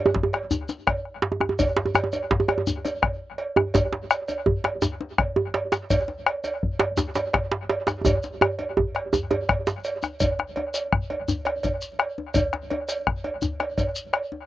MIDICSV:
0, 0, Header, 1, 5, 480
1, 0, Start_track
1, 0, Tempo, 358637
1, 2128, Time_signature, 12, 3, 24, 8
1, 19357, End_track
2, 0, Start_track
2, 0, Title_t, "Bombo"
2, 211, Note_on_c, 9, 43, 104
2, 345, Note_off_c, 9, 43, 0
2, 455, Note_on_c, 9, 37, 89
2, 589, Note_off_c, 9, 37, 0
2, 691, Note_on_c, 9, 37, 32
2, 825, Note_off_c, 9, 37, 0
2, 930, Note_on_c, 9, 37, 35
2, 1063, Note_off_c, 9, 37, 0
2, 1170, Note_on_c, 9, 37, 112
2, 1170, Note_on_c, 9, 43, 101
2, 1303, Note_off_c, 9, 37, 0
2, 1303, Note_off_c, 9, 43, 0
2, 1410, Note_on_c, 9, 37, 31
2, 1544, Note_off_c, 9, 37, 0
2, 1889, Note_on_c, 9, 37, 87
2, 2023, Note_off_c, 9, 37, 0
2, 2136, Note_on_c, 9, 43, 108
2, 2269, Note_off_c, 9, 43, 0
2, 2380, Note_on_c, 9, 37, 33
2, 2514, Note_off_c, 9, 37, 0
2, 2615, Note_on_c, 9, 37, 115
2, 2749, Note_off_c, 9, 37, 0
2, 3090, Note_on_c, 9, 43, 107
2, 3224, Note_off_c, 9, 43, 0
2, 3330, Note_on_c, 9, 37, 91
2, 3464, Note_off_c, 9, 37, 0
2, 3577, Note_on_c, 9, 37, 34
2, 3711, Note_off_c, 9, 37, 0
2, 4052, Note_on_c, 9, 37, 113
2, 4052, Note_on_c, 9, 43, 102
2, 4186, Note_off_c, 9, 37, 0
2, 4186, Note_off_c, 9, 43, 0
2, 4535, Note_on_c, 9, 37, 36
2, 4669, Note_off_c, 9, 37, 0
2, 4779, Note_on_c, 9, 37, 88
2, 4913, Note_off_c, 9, 37, 0
2, 5016, Note_on_c, 9, 43, 116
2, 5150, Note_off_c, 9, 43, 0
2, 5255, Note_on_c, 9, 37, 34
2, 5388, Note_off_c, 9, 37, 0
2, 5497, Note_on_c, 9, 37, 116
2, 5631, Note_off_c, 9, 37, 0
2, 5984, Note_on_c, 9, 43, 100
2, 6118, Note_off_c, 9, 43, 0
2, 6221, Note_on_c, 9, 37, 85
2, 6355, Note_off_c, 9, 37, 0
2, 6459, Note_on_c, 9, 37, 34
2, 6593, Note_off_c, 9, 37, 0
2, 6938, Note_on_c, 9, 37, 103
2, 6938, Note_on_c, 9, 43, 113
2, 7072, Note_off_c, 9, 37, 0
2, 7072, Note_off_c, 9, 43, 0
2, 7423, Note_on_c, 9, 37, 34
2, 7557, Note_off_c, 9, 37, 0
2, 7665, Note_on_c, 9, 37, 84
2, 7798, Note_off_c, 9, 37, 0
2, 7902, Note_on_c, 9, 43, 102
2, 8036, Note_off_c, 9, 43, 0
2, 8146, Note_on_c, 9, 37, 31
2, 8280, Note_off_c, 9, 37, 0
2, 8385, Note_on_c, 9, 37, 106
2, 8519, Note_off_c, 9, 37, 0
2, 8873, Note_on_c, 9, 43, 104
2, 9007, Note_off_c, 9, 43, 0
2, 9105, Note_on_c, 9, 37, 82
2, 9239, Note_off_c, 9, 37, 0
2, 9354, Note_on_c, 9, 37, 33
2, 9488, Note_off_c, 9, 37, 0
2, 9824, Note_on_c, 9, 37, 104
2, 9824, Note_on_c, 9, 43, 104
2, 9958, Note_off_c, 9, 37, 0
2, 9958, Note_off_c, 9, 43, 0
2, 10307, Note_on_c, 9, 37, 32
2, 10441, Note_off_c, 9, 37, 0
2, 10544, Note_on_c, 9, 37, 82
2, 10678, Note_off_c, 9, 37, 0
2, 10786, Note_on_c, 9, 37, 33
2, 10786, Note_on_c, 9, 43, 112
2, 10920, Note_off_c, 9, 37, 0
2, 10920, Note_off_c, 9, 43, 0
2, 11271, Note_on_c, 9, 37, 109
2, 11405, Note_off_c, 9, 37, 0
2, 11756, Note_on_c, 9, 37, 31
2, 11756, Note_on_c, 9, 43, 103
2, 11890, Note_off_c, 9, 37, 0
2, 11890, Note_off_c, 9, 43, 0
2, 11992, Note_on_c, 9, 37, 77
2, 12125, Note_off_c, 9, 37, 0
2, 12704, Note_on_c, 9, 37, 101
2, 12704, Note_on_c, 9, 43, 103
2, 12838, Note_off_c, 9, 37, 0
2, 12838, Note_off_c, 9, 43, 0
2, 13434, Note_on_c, 9, 37, 76
2, 13568, Note_off_c, 9, 37, 0
2, 13675, Note_on_c, 9, 43, 102
2, 13809, Note_off_c, 9, 43, 0
2, 13914, Note_on_c, 9, 37, 78
2, 14048, Note_off_c, 9, 37, 0
2, 14153, Note_on_c, 9, 37, 34
2, 14286, Note_off_c, 9, 37, 0
2, 14393, Note_on_c, 9, 37, 32
2, 14527, Note_off_c, 9, 37, 0
2, 14622, Note_on_c, 9, 37, 94
2, 14622, Note_on_c, 9, 43, 104
2, 14756, Note_off_c, 9, 37, 0
2, 14756, Note_off_c, 9, 43, 0
2, 14863, Note_on_c, 9, 37, 31
2, 14997, Note_off_c, 9, 37, 0
2, 15103, Note_on_c, 9, 37, 29
2, 15237, Note_off_c, 9, 37, 0
2, 15347, Note_on_c, 9, 37, 83
2, 15481, Note_off_c, 9, 37, 0
2, 15581, Note_on_c, 9, 43, 94
2, 15715, Note_off_c, 9, 43, 0
2, 16054, Note_on_c, 9, 37, 95
2, 16188, Note_off_c, 9, 37, 0
2, 16536, Note_on_c, 9, 43, 92
2, 16670, Note_off_c, 9, 43, 0
2, 16769, Note_on_c, 9, 37, 75
2, 16903, Note_off_c, 9, 37, 0
2, 17016, Note_on_c, 9, 37, 32
2, 17150, Note_off_c, 9, 37, 0
2, 17252, Note_on_c, 9, 37, 32
2, 17386, Note_off_c, 9, 37, 0
2, 17492, Note_on_c, 9, 37, 92
2, 17492, Note_on_c, 9, 43, 92
2, 17626, Note_off_c, 9, 37, 0
2, 17626, Note_off_c, 9, 43, 0
2, 17729, Note_on_c, 9, 37, 29
2, 17862, Note_off_c, 9, 37, 0
2, 17968, Note_on_c, 9, 37, 29
2, 18102, Note_off_c, 9, 37, 0
2, 18204, Note_on_c, 9, 37, 75
2, 18338, Note_off_c, 9, 37, 0
2, 18439, Note_on_c, 9, 43, 97
2, 18573, Note_off_c, 9, 43, 0
2, 18919, Note_on_c, 9, 37, 93
2, 19053, Note_off_c, 9, 37, 0
2, 19357, End_track
3, 0, Start_track
3, 0, Title_t, "Djembe"
3, 76, Note_on_c, 9, 63, 112
3, 193, Note_on_c, 9, 62, 81
3, 210, Note_off_c, 9, 63, 0
3, 312, Note_on_c, 9, 63, 83
3, 327, Note_off_c, 9, 62, 0
3, 446, Note_off_c, 9, 63, 0
3, 451, Note_on_c, 9, 62, 24
3, 585, Note_off_c, 9, 62, 0
3, 679, Note_on_c, 9, 64, 86
3, 813, Note_off_c, 9, 64, 0
3, 923, Note_on_c, 9, 62, 62
3, 923, Note_on_c, 9, 63, 65
3, 1057, Note_off_c, 9, 62, 0
3, 1057, Note_off_c, 9, 63, 0
3, 1635, Note_on_c, 9, 62, 113
3, 1649, Note_off_c, 9, 62, 0
3, 1649, Note_on_c, 9, 62, 24
3, 1763, Note_on_c, 9, 63, 74
3, 1783, Note_off_c, 9, 62, 0
3, 1880, Note_off_c, 9, 63, 0
3, 1880, Note_on_c, 9, 63, 86
3, 1885, Note_off_c, 9, 63, 0
3, 1885, Note_on_c, 9, 63, 67
3, 1997, Note_off_c, 9, 63, 0
3, 1997, Note_on_c, 9, 63, 80
3, 2130, Note_off_c, 9, 63, 0
3, 2133, Note_on_c, 9, 64, 80
3, 2267, Note_off_c, 9, 64, 0
3, 2362, Note_on_c, 9, 62, 103
3, 2368, Note_off_c, 9, 62, 0
3, 2368, Note_on_c, 9, 62, 60
3, 2483, Note_on_c, 9, 63, 84
3, 2501, Note_off_c, 9, 62, 0
3, 2605, Note_off_c, 9, 63, 0
3, 2605, Note_on_c, 9, 63, 83
3, 2726, Note_off_c, 9, 63, 0
3, 2726, Note_on_c, 9, 63, 82
3, 2851, Note_off_c, 9, 63, 0
3, 2851, Note_on_c, 9, 63, 64
3, 2985, Note_off_c, 9, 63, 0
3, 3089, Note_on_c, 9, 62, 103
3, 3209, Note_on_c, 9, 63, 86
3, 3223, Note_off_c, 9, 62, 0
3, 3325, Note_off_c, 9, 63, 0
3, 3325, Note_on_c, 9, 63, 85
3, 3340, Note_on_c, 9, 62, 25
3, 3450, Note_off_c, 9, 63, 0
3, 3450, Note_on_c, 9, 63, 77
3, 3474, Note_off_c, 9, 62, 0
3, 3576, Note_on_c, 9, 64, 78
3, 3583, Note_off_c, 9, 63, 0
3, 3710, Note_off_c, 9, 64, 0
3, 3818, Note_on_c, 9, 62, 60
3, 3818, Note_on_c, 9, 63, 58
3, 3952, Note_off_c, 9, 62, 0
3, 3952, Note_off_c, 9, 63, 0
3, 4769, Note_on_c, 9, 63, 116
3, 4777, Note_off_c, 9, 63, 0
3, 4777, Note_on_c, 9, 63, 62
3, 4911, Note_off_c, 9, 63, 0
3, 5013, Note_on_c, 9, 62, 88
3, 5013, Note_on_c, 9, 64, 73
3, 5147, Note_off_c, 9, 62, 0
3, 5147, Note_off_c, 9, 64, 0
3, 5254, Note_on_c, 9, 62, 65
3, 5388, Note_off_c, 9, 62, 0
3, 5739, Note_on_c, 9, 63, 58
3, 5873, Note_off_c, 9, 63, 0
3, 5970, Note_on_c, 9, 63, 95
3, 6104, Note_off_c, 9, 63, 0
3, 6212, Note_on_c, 9, 62, 79
3, 6216, Note_off_c, 9, 62, 0
3, 6216, Note_on_c, 9, 62, 22
3, 6350, Note_off_c, 9, 62, 0
3, 6451, Note_on_c, 9, 62, 77
3, 6454, Note_on_c, 9, 64, 76
3, 6585, Note_off_c, 9, 62, 0
3, 6588, Note_off_c, 9, 64, 0
3, 6699, Note_on_c, 9, 62, 55
3, 6699, Note_on_c, 9, 63, 56
3, 6833, Note_off_c, 9, 62, 0
3, 6833, Note_off_c, 9, 63, 0
3, 7177, Note_on_c, 9, 63, 97
3, 7310, Note_off_c, 9, 63, 0
3, 7415, Note_on_c, 9, 62, 91
3, 7549, Note_off_c, 9, 62, 0
3, 7656, Note_on_c, 9, 62, 85
3, 7790, Note_off_c, 9, 62, 0
3, 7902, Note_on_c, 9, 64, 65
3, 8035, Note_off_c, 9, 64, 0
3, 8138, Note_on_c, 9, 62, 53
3, 8272, Note_off_c, 9, 62, 0
3, 8617, Note_on_c, 9, 63, 51
3, 8751, Note_off_c, 9, 63, 0
3, 9094, Note_on_c, 9, 62, 115
3, 9227, Note_off_c, 9, 62, 0
3, 9335, Note_on_c, 9, 62, 81
3, 9338, Note_on_c, 9, 64, 76
3, 9469, Note_off_c, 9, 62, 0
3, 9471, Note_off_c, 9, 64, 0
3, 9575, Note_on_c, 9, 62, 81
3, 9583, Note_off_c, 9, 62, 0
3, 9583, Note_on_c, 9, 62, 59
3, 9583, Note_on_c, 9, 63, 58
3, 9717, Note_off_c, 9, 62, 0
3, 9717, Note_off_c, 9, 63, 0
3, 9825, Note_on_c, 9, 62, 86
3, 9959, Note_off_c, 9, 62, 0
3, 10058, Note_on_c, 9, 62, 109
3, 10192, Note_off_c, 9, 62, 0
3, 10299, Note_on_c, 9, 62, 86
3, 10432, Note_off_c, 9, 62, 0
3, 10531, Note_on_c, 9, 62, 90
3, 10547, Note_on_c, 9, 63, 61
3, 10665, Note_off_c, 9, 62, 0
3, 10681, Note_off_c, 9, 63, 0
3, 10770, Note_on_c, 9, 63, 105
3, 10786, Note_on_c, 9, 64, 76
3, 10904, Note_off_c, 9, 63, 0
3, 10919, Note_off_c, 9, 64, 0
3, 11027, Note_on_c, 9, 62, 62
3, 11161, Note_off_c, 9, 62, 0
3, 11259, Note_on_c, 9, 63, 109
3, 11393, Note_off_c, 9, 63, 0
3, 11498, Note_on_c, 9, 63, 59
3, 11632, Note_off_c, 9, 63, 0
3, 11738, Note_on_c, 9, 63, 102
3, 11871, Note_off_c, 9, 63, 0
3, 12217, Note_on_c, 9, 63, 106
3, 12221, Note_on_c, 9, 62, 29
3, 12221, Note_on_c, 9, 64, 89
3, 12351, Note_off_c, 9, 63, 0
3, 12355, Note_off_c, 9, 62, 0
3, 12355, Note_off_c, 9, 64, 0
3, 12459, Note_on_c, 9, 63, 99
3, 12462, Note_off_c, 9, 63, 0
3, 12462, Note_on_c, 9, 62, 61
3, 12462, Note_on_c, 9, 63, 64
3, 12596, Note_off_c, 9, 62, 0
3, 12596, Note_off_c, 9, 63, 0
3, 12705, Note_on_c, 9, 62, 25
3, 12839, Note_off_c, 9, 62, 0
3, 12941, Note_on_c, 9, 62, 25
3, 12942, Note_off_c, 9, 62, 0
3, 12942, Note_on_c, 9, 62, 95
3, 13076, Note_off_c, 9, 62, 0
3, 13420, Note_on_c, 9, 63, 71
3, 13554, Note_off_c, 9, 63, 0
3, 13666, Note_on_c, 9, 64, 68
3, 13800, Note_off_c, 9, 64, 0
3, 13907, Note_on_c, 9, 62, 56
3, 14040, Note_off_c, 9, 62, 0
3, 14146, Note_on_c, 9, 63, 75
3, 14280, Note_off_c, 9, 63, 0
3, 14861, Note_on_c, 9, 63, 57
3, 14995, Note_off_c, 9, 63, 0
3, 15102, Note_on_c, 9, 64, 82
3, 15236, Note_off_c, 9, 64, 0
3, 15340, Note_on_c, 9, 62, 58
3, 15474, Note_off_c, 9, 62, 0
3, 15580, Note_on_c, 9, 63, 74
3, 15714, Note_off_c, 9, 63, 0
3, 16302, Note_on_c, 9, 63, 68
3, 16436, Note_off_c, 9, 63, 0
3, 16538, Note_on_c, 9, 64, 80
3, 16672, Note_off_c, 9, 64, 0
3, 16775, Note_on_c, 9, 62, 66
3, 16909, Note_off_c, 9, 62, 0
3, 17014, Note_on_c, 9, 63, 79
3, 17148, Note_off_c, 9, 63, 0
3, 17725, Note_on_c, 9, 63, 60
3, 17859, Note_off_c, 9, 63, 0
3, 17963, Note_on_c, 9, 64, 80
3, 18097, Note_off_c, 9, 64, 0
3, 18209, Note_on_c, 9, 62, 57
3, 18343, Note_off_c, 9, 62, 0
3, 18445, Note_on_c, 9, 63, 71
3, 18579, Note_off_c, 9, 63, 0
3, 19165, Note_on_c, 9, 63, 61
3, 19298, Note_off_c, 9, 63, 0
3, 19357, End_track
4, 0, Start_track
4, 0, Title_t, "Shekere"
4, 683, Note_on_c, 9, 82, 54
4, 816, Note_off_c, 9, 82, 0
4, 919, Note_on_c, 9, 82, 18
4, 1053, Note_off_c, 9, 82, 0
4, 2128, Note_on_c, 9, 82, 60
4, 2262, Note_off_c, 9, 82, 0
4, 2604, Note_on_c, 9, 82, 18
4, 2738, Note_off_c, 9, 82, 0
4, 2843, Note_on_c, 9, 82, 17
4, 2977, Note_off_c, 9, 82, 0
4, 3574, Note_on_c, 9, 82, 53
4, 3708, Note_off_c, 9, 82, 0
4, 3823, Note_on_c, 9, 82, 19
4, 3957, Note_off_c, 9, 82, 0
4, 5016, Note_on_c, 9, 82, 59
4, 5150, Note_off_c, 9, 82, 0
4, 5493, Note_on_c, 9, 82, 20
4, 5627, Note_off_c, 9, 82, 0
4, 5734, Note_on_c, 9, 82, 20
4, 5868, Note_off_c, 9, 82, 0
4, 6452, Note_on_c, 9, 82, 58
4, 6586, Note_off_c, 9, 82, 0
4, 7662, Note_on_c, 9, 82, 19
4, 7796, Note_off_c, 9, 82, 0
4, 7902, Note_on_c, 9, 82, 61
4, 8035, Note_off_c, 9, 82, 0
4, 8622, Note_on_c, 9, 82, 18
4, 8755, Note_off_c, 9, 82, 0
4, 9329, Note_on_c, 9, 82, 60
4, 9463, Note_off_c, 9, 82, 0
4, 9568, Note_on_c, 9, 82, 19
4, 9702, Note_off_c, 9, 82, 0
4, 10540, Note_on_c, 9, 82, 19
4, 10674, Note_off_c, 9, 82, 0
4, 10777, Note_on_c, 9, 82, 65
4, 10911, Note_off_c, 9, 82, 0
4, 11014, Note_on_c, 9, 82, 19
4, 11148, Note_off_c, 9, 82, 0
4, 12224, Note_on_c, 9, 82, 57
4, 12358, Note_off_c, 9, 82, 0
4, 12943, Note_on_c, 9, 82, 18
4, 13077, Note_off_c, 9, 82, 0
4, 13174, Note_on_c, 9, 82, 19
4, 13308, Note_off_c, 9, 82, 0
4, 13416, Note_on_c, 9, 82, 20
4, 13550, Note_off_c, 9, 82, 0
4, 13656, Note_on_c, 9, 82, 63
4, 13790, Note_off_c, 9, 82, 0
4, 14378, Note_on_c, 9, 82, 47
4, 14512, Note_off_c, 9, 82, 0
4, 15103, Note_on_c, 9, 82, 60
4, 15237, Note_off_c, 9, 82, 0
4, 15574, Note_on_c, 9, 82, 20
4, 15708, Note_off_c, 9, 82, 0
4, 15812, Note_on_c, 9, 82, 42
4, 15946, Note_off_c, 9, 82, 0
4, 16521, Note_on_c, 9, 82, 60
4, 16655, Note_off_c, 9, 82, 0
4, 17247, Note_on_c, 9, 82, 44
4, 17380, Note_off_c, 9, 82, 0
4, 17959, Note_on_c, 9, 82, 56
4, 18093, Note_off_c, 9, 82, 0
4, 18445, Note_on_c, 9, 82, 18
4, 18579, Note_off_c, 9, 82, 0
4, 18679, Note_on_c, 9, 82, 43
4, 18812, Note_off_c, 9, 82, 0
4, 19357, End_track
5, 0, Start_track
5, 0, Title_t, "Drums"
5, 445, Note_on_c, 9, 56, 45
5, 578, Note_off_c, 9, 56, 0
5, 1163, Note_on_c, 9, 56, 51
5, 1297, Note_off_c, 9, 56, 0
5, 2128, Note_on_c, 9, 56, 69
5, 2261, Note_off_c, 9, 56, 0
5, 2615, Note_on_c, 9, 56, 51
5, 2749, Note_off_c, 9, 56, 0
5, 2850, Note_on_c, 9, 56, 49
5, 2984, Note_off_c, 9, 56, 0
5, 3323, Note_on_c, 9, 56, 46
5, 3457, Note_off_c, 9, 56, 0
5, 3809, Note_on_c, 9, 56, 48
5, 3943, Note_off_c, 9, 56, 0
5, 4046, Note_on_c, 9, 56, 47
5, 4180, Note_off_c, 9, 56, 0
5, 4526, Note_on_c, 9, 56, 46
5, 4660, Note_off_c, 9, 56, 0
5, 5006, Note_on_c, 9, 56, 56
5, 5139, Note_off_c, 9, 56, 0
5, 5498, Note_on_c, 9, 56, 44
5, 5631, Note_off_c, 9, 56, 0
5, 5733, Note_on_c, 9, 56, 48
5, 5866, Note_off_c, 9, 56, 0
5, 6216, Note_on_c, 9, 56, 44
5, 6349, Note_off_c, 9, 56, 0
5, 6936, Note_on_c, 9, 56, 46
5, 7070, Note_off_c, 9, 56, 0
5, 7418, Note_on_c, 9, 56, 55
5, 7552, Note_off_c, 9, 56, 0
5, 7902, Note_on_c, 9, 56, 70
5, 8036, Note_off_c, 9, 56, 0
5, 8383, Note_on_c, 9, 56, 56
5, 8517, Note_off_c, 9, 56, 0
5, 8622, Note_on_c, 9, 56, 57
5, 8755, Note_off_c, 9, 56, 0
5, 9095, Note_on_c, 9, 56, 52
5, 9229, Note_off_c, 9, 56, 0
5, 9577, Note_on_c, 9, 56, 54
5, 9711, Note_off_c, 9, 56, 0
5, 9816, Note_on_c, 9, 56, 54
5, 9950, Note_off_c, 9, 56, 0
5, 10299, Note_on_c, 9, 56, 58
5, 10433, Note_off_c, 9, 56, 0
5, 10788, Note_on_c, 9, 56, 68
5, 10922, Note_off_c, 9, 56, 0
5, 11266, Note_on_c, 9, 56, 51
5, 11400, Note_off_c, 9, 56, 0
5, 11492, Note_on_c, 9, 56, 51
5, 11626, Note_off_c, 9, 56, 0
5, 11975, Note_on_c, 9, 56, 46
5, 12109, Note_off_c, 9, 56, 0
5, 12455, Note_on_c, 9, 56, 51
5, 12589, Note_off_c, 9, 56, 0
5, 12699, Note_on_c, 9, 56, 54
5, 12833, Note_off_c, 9, 56, 0
5, 13179, Note_on_c, 9, 56, 54
5, 13313, Note_off_c, 9, 56, 0
5, 13655, Note_on_c, 9, 56, 59
5, 13789, Note_off_c, 9, 56, 0
5, 14132, Note_on_c, 9, 56, 49
5, 14266, Note_off_c, 9, 56, 0
5, 14377, Note_on_c, 9, 56, 49
5, 14510, Note_off_c, 9, 56, 0
5, 14857, Note_on_c, 9, 56, 45
5, 14991, Note_off_c, 9, 56, 0
5, 15327, Note_on_c, 9, 56, 48
5, 15461, Note_off_c, 9, 56, 0
5, 15569, Note_on_c, 9, 56, 46
5, 15703, Note_off_c, 9, 56, 0
5, 16047, Note_on_c, 9, 56, 50
5, 16181, Note_off_c, 9, 56, 0
5, 16519, Note_on_c, 9, 56, 67
5, 16653, Note_off_c, 9, 56, 0
5, 17003, Note_on_c, 9, 56, 53
5, 17137, Note_off_c, 9, 56, 0
5, 17246, Note_on_c, 9, 56, 52
5, 17380, Note_off_c, 9, 56, 0
5, 17724, Note_on_c, 9, 56, 44
5, 17858, Note_off_c, 9, 56, 0
5, 18200, Note_on_c, 9, 56, 46
5, 18334, Note_off_c, 9, 56, 0
5, 18438, Note_on_c, 9, 56, 50
5, 18572, Note_off_c, 9, 56, 0
5, 18913, Note_on_c, 9, 56, 50
5, 19047, Note_off_c, 9, 56, 0
5, 19357, End_track
0, 0, End_of_file